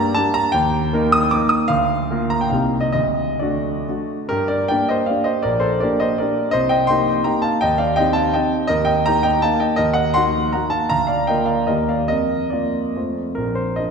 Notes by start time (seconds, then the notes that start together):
Already playing: G2 A#3 D4 G4 D5 A#5
0.14 A#3 D4 G4 A5
0.34 A#5
0.52 D#2 G5
0.93 A#3 D#4 A#4
1.12 D#6
1.31 A#3 D#4 A#4 D6
1.49 D#6
1.68 D2 F5
2.11 A#3 F4 A#4
2.30 A#5
2.41 G5
2.50 C2 A#3 D#4 G4 F5
2.81 D#5
2.93 D2 D#5
3.39 A3 D4 F#4 D5
3.88 A3 D4 F#4
4.29 G2 G4 A#4
4.48 A#4 D5
4.68 A#3 D4 G4 D5 G5
4.89 C5 D#5
5.06 A#3 D4 G4 D5 F5
5.24 C5 D#5
5.43 A#1 A#4 D5
5.60 A4 C5
5.80 A#3 D4 G4 A#4 D5
6.00 C5 D#5
6.18 A#3 D4 G4 A#4 D5
6.51 C2 C5 D#5
6.69 D#5 G5
6.87 A#3 D#4 G4 G5 C6
7.24 A#3 D#4 G4 G5 A#5
7.42 F5 A5
7.61 D#2 D#5 G5
7.78 D5 F5
7.96 C4 D#4 G4 D#5 G5
8.13 F5 A5
8.33 C4 D#4 G4 D#5 G5
8.67 D#2 A#4 D#5
8.85 D#5 G5
9.06 A#3 D#4 G4 G5 A#5
9.23 D#5 G5
9.42 A#3 D#4 G4 F5 A5
9.60 D#5 G5
9.76 D#2 A#4 D#5
9.94 D#5 F#5
10.14 A#3 D#4 F#4 F#5 C6
10.53 A#3 D#4 F#4 F#5 A#5
10.70 F5 A5
10.89 D2 F5 A#5
11.07 D5 F5
11.27 A#3 F4 A#4 D#5 G5
11.46 D5 F5
11.67 D#2 A#3 G4 A#4 D#5
11.89 D5 F5
12.08 F2 A#4 D#5
12.50 A#3 F4 A#4 D5
12.96 F2 A3 F4 C5
13.35 A#1 A#4
13.55 C5
13.76 F3 D4 D#5
13.80 A#4